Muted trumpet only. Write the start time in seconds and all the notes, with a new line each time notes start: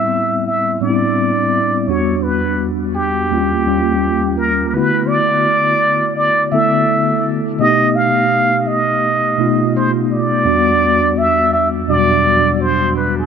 Already playing: E5
0.46 E5
0.81 D5
1.87 C#5
2.23 B4
2.94 G4
4.37 A#4
4.69 A#4
4.74 B4
5.08 D5
6.16 D5
6.51 E5
7.60 D#5
7.95 F5
8.67 D#5
9.76 C5
10.12 D5
11.18 E5
11.53 E5
11.89 D5
12.61 C5
12.96 B4
13.18 A4